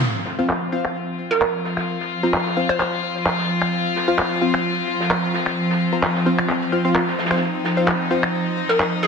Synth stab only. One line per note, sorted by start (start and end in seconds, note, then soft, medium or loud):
0.39 0.48 C4 medium
0.39 0.49 F4 medium
0.39 0.49 C5 medium
0.39 0.49 F5 medium
0.72 0.84 C4 medium
0.72 0.84 F4 medium
0.72 0.84 C5 medium
0.72 0.84 F5 medium
2.23 2.33 C4 medium
2.23 2.33 F4 medium
2.23 2.33 C5 medium
2.23 2.33 A#5 medium
2.57 2.69 C4 medium
2.57 2.69 F4 medium
2.57 2.69 C5 medium
2.57 2.69 F5 medium
4.08 4.18 C4 medium
4.08 4.18 F4 medium
4.08 4.18 C5 medium
4.08 4.18 F5 medium
4.41 4.53 C4 medium
4.41 4.53 F4 medium
4.41 4.53 C5 medium
4.41 4.53 F5 medium
5.92 6.02 C4 medium
5.92 6.02 F4 medium
5.92 6.02 C5 medium
5.92 6.02 A#5 medium
6.26 6.38 C4 medium
6.26 6.38 F4 medium
6.26 6.38 C5 medium
6.26 6.38 F5 medium
6.72 6.83 C4 medium
6.72 6.83 F4 medium
6.72 6.83 C5 medium
6.72 6.83 F5 medium
6.85 7.02 C4 medium
6.85 7.02 F4 medium
6.85 7.02 C5 medium
6.85 7.02 F5 medium
7.31 7.41 C4 medium
7.31 7.41 F4 medium
7.31 7.41 C5 medium
7.31 7.41 F5 medium
7.77 7.87 C4 medium
7.77 7.87 F4 medium
7.77 7.87 C5 medium
7.77 7.87 F5 medium
8.11 8.22 C4 medium
8.11 8.22 F4 medium
8.11 8.22 C5 medium
8.11 8.22 F5 medium